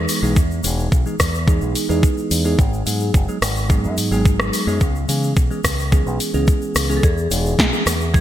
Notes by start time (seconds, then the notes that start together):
Already playing: E3 G#3 B3 D#4 G#4
0.09 open hi-hat, shaker
0.22 B1 E3 G#3 B3 D#4 G#4, shaker
0.36 E2, kick, shaker
0.51 shaker
0.64 E1 E3 G#3 B3 D#4 G#4, open hi-hat, shaker
0.79 shaker
0.92 B1, kick, shaker
1.06 E3 G#3 B3 D#4 G#4, shaker
1.20 E2, kick, cross-stick, open hi-hat, shaker
1.34 shaker
1.47 E3 G#3 B3 D#4 G#4, kick, shaker
1.62 B1, shaker
1.75 open hi-hat, shaker
1.89 E2 E3 G#3 B3 D#4 G#4, shaker
2.03 kick, shaker
2.18 shaker
2.31 E2, open hi-hat, shaker
2.44 E3 G#3 B3 D#4 G#4, shaker
2.59 G#1, kick, shaker
2.73 shaker
2.86 G#2 F#3 G#3 B3 D#4 G#4, open hi-hat, shaker
3.00 shaker
3.14 F#1, kick, shaker
3.28 F#3 G#3 B3 D#4 G#4, shaker
3.42 G#1, cross-stick, open hi-hat, shaker
3.56 shaker
3.69 F#3 G#3 B3 D#4 G#4, kick, shaker
3.84 F#2, shaker
3.97 G#2, open hi-hat, shaker
4.11 G#1 F#3 G#3 B3 D#4 G#4, shaker
4.25 kick, shaker
4.40 cross-stick, shaker
4.53 open hi-hat, shaker
4.67 F#2 F#3 G#3 B3 D#4 G#4, shaker
4.81 C#2, kick, shaker
4.95 shaker
5.08 C#3 E3 G#3 B3 C#4 G#4, open hi-hat, shaker
5.23 shaker
5.36 B1, kick, shaker
5.50 E3 G#3 B3 C#4 G#4, shaker
5.64 C#2, kick, cross-stick, open hi-hat, shaker
5.79 shaker
5.92 E3 G#3 B3 C#4 G#4, kick, shaker
6.06 B1, shaker
6.20 open hi-hat, shaker
6.33 C#2 E3 G#3 B3 C#4 G#4, shaker
6.47 kick, shaker
6.62 shaker
6.75 C#2, cross-stick, open hi-hat, shaker
6.89 E3 G#3 B3 C#4 G#4, shaker
6.97 A4
7.03 E2 G#4, kick, shaker
7.18 shaker
7.30 E1 E3 G#3 B3 D#4 G#4, open hi-hat, shaker
7.46 shaker
7.59 kick, snare, shaker
7.72 E3 G#3 B3 D#4 G#4, shaker
7.86 E2, cross-stick, open hi-hat, shaker
8.00 shaker
8.13 E3 G#3 B3 D#4 G#4, kick, shaker